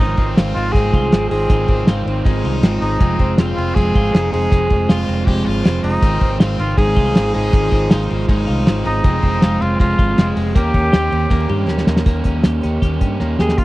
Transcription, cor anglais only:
0.00 0.33 D#4 medium
0.54 0.74 F4 loud
0.72 1.28 G#4 loud
1.29 2.02 G#4 loud
2.81 3.34 D#4 medium
3.55 3.76 F4 loud
3.75 4.32 G#4 loud
4.33 5.04 G#4 loud
5.84 6.36 D#4 loud
6.60 6.77 F4 medium
6.77 7.30 G#4 loud
7.35 8.06 G#4 loud
8.86 9.62 D#4 loud
9.61 9.79 F4 loud
9.80 10.32 F4 loud
10.57 11.65 G4 loud
13.40 13.60 G#4 loud
13.58 13.65 F4 medium

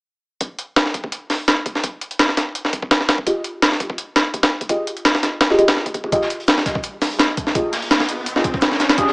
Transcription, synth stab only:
3.26 3.42 F4 medium
3.26 3.42 G4 medium
3.26 3.42 G#4 medium
3.26 3.42 D#5 medium
4.69 4.85 F4 medium
4.69 4.85 G4 medium
4.69 4.85 G#4 medium
4.69 4.85 D#5 medium
5.50 5.57 F4 medium
5.50 5.57 G4 medium
5.50 5.57 G#4 medium
5.50 5.57 D#5 medium
5.58 5.68 F4 loud
5.58 5.68 G4 medium
5.58 5.68 G#4 medium
5.58 5.68 D#5 loud
6.12 6.27 F4 medium
6.12 6.27 G4 medium
6.12 6.27 G#4 medium
6.12 6.27 D#5 medium
7.55 7.70 F4 medium
7.55 7.70 G4 medium
7.55 7.70 G#4 medium
7.55 7.70 D#5 medium
8.36 8.45 F4 medium
8.36 8.45 G4 medium
8.36 8.45 G#4 medium
8.36 8.45 D#5 medium
8.98 9.13 F4 medium
8.98 9.13 G4 medium
8.98 9.13 G#4 medium
8.98 9.13 D#5 loud

